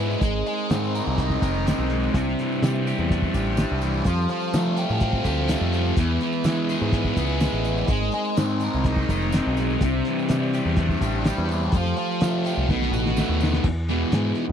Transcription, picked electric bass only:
Already playing: G#2
0.22 G#1
0.71 G#2
1.07 C2
1.42 F1
1.79 B1
2.14 C2
2.62 C3
2.99 E2
3.34 A1
3.72 C2
4.06 F2
4.54 F3
4.90 A2
5.25 D2
5.61 F2
5.97 E2
6.45 E3
6.82 G#2
7.17 C#2
7.53 A1
7.88 G#1
8.38 G#2
8.74 C2
9.09 F1
9.47 B1
9.81 C2
10.30 C3
10.66 E2
11.01 A1
11.38 E2
11.72 F2
12.22 F3
12.57 C2
12.69 B1
12.91 A1
13.29 D#2
13.64 E2
14.12 G#2

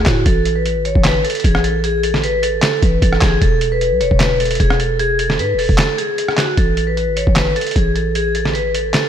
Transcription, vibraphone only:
0.06 F#4
0.26 A4
0.56 B4
0.85 C#5
1.05 B4
1.24 A4
1.44 G#4
1.64 A4
1.85 G#4
2.04 A4
2.23 B4
2.43 A4
2.63 A4
2.83 B4
3.02 A4
3.21 G#4
3.42 A4
3.72 B4
4.00 C#5
4.20 B4
4.40 A4
4.60 G#4
4.80 A4
5.00 G#4
5.19 A4
5.39 B4
5.58 A4
5.79 A4
5.98 G#4
6.38 F#4
6.57 A4
6.87 B4
7.16 C#5
7.36 B4
7.56 A4
7.75 G#4
7.95 A4
8.15 G#4
8.35 A4
8.54 B4
8.74 A4
8.95 A4

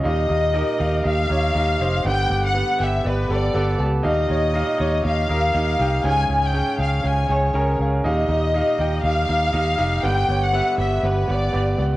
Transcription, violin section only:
0.06 D#5
1.07 F5
2.07 G5
2.46 F#5
2.82 E5
3.07 B4
3.32 D5
4.06 D#5
5.06 F5
6.06 G#5
6.46 G5
6.81 F5
7.06 G#5
7.31 C#5
8.06 D#5
9.06 F5
10.05 G5
10.44 F#5
10.79 E5
11.05 B4
11.30 D5

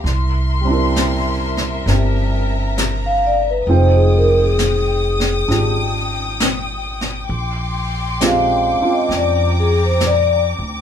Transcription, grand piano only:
0.61 G3 C4
0.67 D4 E4
0.73 A#4
1.88 C4 D4 G4
3.68 G#3 C4 D#4 F4 G5
5.48 D4 F4 G4
8.20 G#3 C4 D4 F4 G4
8.81 C4 D4 F4

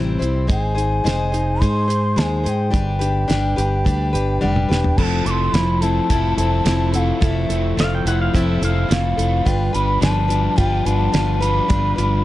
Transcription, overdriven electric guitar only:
5.00 F3
5.27 A3
5.55 F3
5.83 A3
6.11 E4
6.40 C4
6.68 F3
6.96 A3
7.23 F3
7.51 A3
7.78 F3
8.06 A3
8.35 E4
8.63 C4
8.91 F3
9.18 A3
9.45 G2
9.74 G3
10.02 F3
10.29 G3
10.58 G4
10.86 B3
11.14 F3
11.42 G3
11.70 G2
11.99 G3

